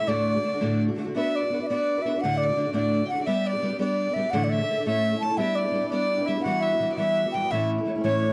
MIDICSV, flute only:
0, 0, Header, 1, 2, 480
1, 0, Start_track
1, 0, Key_signature, 2, "major"
1, 0, Tempo, 352734
1, 125, Time_signature, 6, 3, 24, 8
1, 11333, End_track
2, 0, Start_track
2, 0, Title_t, "Flute"
2, 0, Program_c, 0, 73
2, 105, Note_on_c, 0, 74, 98
2, 1098, Note_off_c, 0, 74, 0
2, 1580, Note_on_c, 0, 76, 96
2, 1843, Note_on_c, 0, 74, 80
2, 1863, Note_off_c, 0, 76, 0
2, 2201, Note_off_c, 0, 74, 0
2, 2209, Note_on_c, 0, 76, 65
2, 2269, Note_on_c, 0, 74, 99
2, 2289, Note_off_c, 0, 76, 0
2, 2749, Note_on_c, 0, 76, 87
2, 2770, Note_off_c, 0, 74, 0
2, 3008, Note_on_c, 0, 78, 106
2, 3028, Note_off_c, 0, 76, 0
2, 3230, Note_on_c, 0, 74, 93
2, 3250, Note_off_c, 0, 78, 0
2, 3712, Note_off_c, 0, 74, 0
2, 3719, Note_on_c, 0, 74, 81
2, 4181, Note_off_c, 0, 74, 0
2, 4192, Note_on_c, 0, 78, 88
2, 4421, Note_off_c, 0, 78, 0
2, 4433, Note_on_c, 0, 76, 92
2, 4626, Note_off_c, 0, 76, 0
2, 4626, Note_on_c, 0, 76, 69
2, 4711, Note_on_c, 0, 74, 89
2, 4731, Note_off_c, 0, 76, 0
2, 5159, Note_off_c, 0, 74, 0
2, 5167, Note_on_c, 0, 74, 91
2, 5630, Note_on_c, 0, 76, 87
2, 5650, Note_off_c, 0, 74, 0
2, 5858, Note_on_c, 0, 78, 98
2, 5879, Note_off_c, 0, 76, 0
2, 6040, Note_on_c, 0, 74, 68
2, 6061, Note_off_c, 0, 78, 0
2, 6120, Note_on_c, 0, 76, 84
2, 6141, Note_off_c, 0, 74, 0
2, 6596, Note_off_c, 0, 76, 0
2, 6614, Note_on_c, 0, 76, 102
2, 7068, Note_off_c, 0, 76, 0
2, 7077, Note_on_c, 0, 81, 93
2, 7315, Note_on_c, 0, 76, 102
2, 7336, Note_off_c, 0, 81, 0
2, 7557, Note_on_c, 0, 74, 88
2, 7577, Note_off_c, 0, 76, 0
2, 8012, Note_off_c, 0, 74, 0
2, 8021, Note_on_c, 0, 74, 95
2, 8519, Note_on_c, 0, 76, 84
2, 8540, Note_off_c, 0, 74, 0
2, 8736, Note_on_c, 0, 78, 109
2, 8757, Note_off_c, 0, 76, 0
2, 8991, Note_on_c, 0, 76, 92
2, 9011, Note_off_c, 0, 78, 0
2, 9463, Note_off_c, 0, 76, 0
2, 9471, Note_on_c, 0, 76, 106
2, 9933, Note_off_c, 0, 76, 0
2, 9958, Note_on_c, 0, 79, 78
2, 10224, Note_on_c, 0, 76, 85
2, 10244, Note_off_c, 0, 79, 0
2, 10473, Note_off_c, 0, 76, 0
2, 10936, Note_on_c, 0, 73, 99
2, 11333, Note_off_c, 0, 73, 0
2, 11333, End_track
0, 0, End_of_file